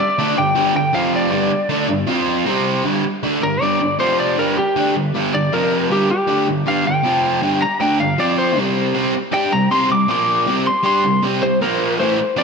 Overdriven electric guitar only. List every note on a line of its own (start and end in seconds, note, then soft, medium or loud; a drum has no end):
0.18 0.35 D3 loud
0.18 0.37 A3 medium
0.18 0.37 D4 loud
0.36 0.52 G2 medium
0.36 0.52 D3 medium
0.55 0.72 G2 medium
0.55 0.73 D3 loud
0.55 0.74 G3 medium
0.74 0.89 G2 medium
0.74 0.90 D3 medium
0.93 1.30 F2 medium
0.93 1.31 C3 medium
0.93 1.32 F3 loud
1.31 1.50 G2 medium
1.31 1.50 D3 loud
1.31 1.50 G3 medium
1.51 muted overdriven electric guitar stroke medium
1.69 1.87 D3 medium
1.69 1.88 A3 medium
1.69 1.88 D4 loud
1.88 2.04 G2 medium
1.88 2.04 D3 medium
2.07 2.45 F3 medium
2.07 2.46 C4 medium
2.07 2.46 F4 loud
2.45 2.83 C3 medium
2.45 2.84 G3 medium
2.45 2.84 C4 loud
2.84 3.03 G2 medium
2.84 3.03 D3 medium
2.84 3.03 G3 medium
3.04 muted overdriven electric guitar stroke soft
3.23 3.40 D3 medium
3.23 3.41 A3 loud
3.23 3.42 D4 medium
3.41 3.57 G2 medium
3.41 3.57 D3 medium
3.62 3.79 G2 medium
3.62 3.79 D3 medium
3.62 3.80 G3 medium
3.81 3.96 G2 medium
3.81 3.96 D3 medium
3.99 4.36 F2 medium
3.99 4.37 C3 medium
3.99 4.37 F3 medium
4.37 4.55 G2 medium
4.37 4.56 D3 medium
4.37 4.56 G3 loud
4.57 muted overdriven electric guitar stroke medium
4.76 4.94 D3 medium
4.76 4.94 A3 medium
4.76 4.95 D4 loud
4.95 5.10 G2 medium
4.95 5.10 D3 medium
5.14 5.32 G2 medium
5.14 5.33 D3 medium
5.14 5.33 G3 medium
5.34 5.48 G2 medium
5.34 5.49 D3 medium
5.53 5.89 F2 medium
5.53 5.90 C3 medium
5.53 5.90 F3 medium
5.90 6.08 G2 medium
5.90 6.09 D3 medium
5.90 6.09 G3 loud
6.10 muted overdriven electric guitar stroke medium
6.27 6.46 D3 medium
6.27 6.47 A3 medium
6.27 6.47 D4 loud
6.47 6.63 G2 medium
6.47 6.63 D3 medium
6.66 6.84 G2 medium
6.66 6.85 D3 medium
6.66 6.85 G3 medium
6.85 7.01 G2 medium
6.85 7.01 D3 medium
7.03 7.42 F2 medium
7.03 7.42 C3 medium
7.03 7.42 F3 medium
7.42 7.60 G2 medium
7.42 7.61 D3 medium
7.42 7.61 G3 medium
7.61 muted overdriven electric guitar stroke medium
7.80 7.99 D3 medium
7.80 7.99 A3 medium
7.80 8.00 D4 medium
7.99 8.15 G2 medium
7.99 8.15 D3 medium
8.18 8.57 F3 medium
8.18 8.58 C4 medium
8.18 8.58 F4 medium
8.57 8.93 C3 medium
8.57 8.94 G3 medium
8.57 8.94 C4 medium
8.94 9.13 C3 medium
8.94 9.14 G3 medium
8.94 9.14 C4 loud
9.15 muted overdriven electric guitar stroke medium
9.32 9.50 G3 medium
9.32 9.52 D4 medium
9.32 9.52 G4 loud
9.52 9.67 C3 medium
9.52 9.67 G3 medium
9.71 9.88 C3 medium
9.71 9.88 G3 medium
9.71 9.90 C4 loud
9.89 10.05 C3 medium
9.89 10.05 G3 medium
10.08 10.46 A#2 medium
10.08 10.47 F3 medium
10.08 10.47 A#3 medium
10.47 10.64 C3 medium
10.47 10.66 G3 medium
10.47 10.66 C4 medium
10.66 muted overdriven electric guitar stroke medium
10.84 11.03 G3 medium
10.84 11.03 D4 medium
10.84 11.03 G4 loud
11.04 11.19 C3 medium
11.04 11.20 G3 medium
11.23 11.41 C3 medium
11.23 11.41 G3 medium
11.23 11.42 C4 medium
11.42 11.58 C3 medium
11.42 11.58 G3 medium
11.61 11.99 A#2 medium
11.61 11.99 F3 medium
11.61 12.00 A#3 medium
12.00 12.18 A2 medium
12.00 12.18 E3 medium
12.00 12.19 A3 loud
12.18 muted overdriven electric guitar stroke medium
12.37 12.43 F3 medium
12.37 12.43 C4 loud
12.37 12.43 F4 loud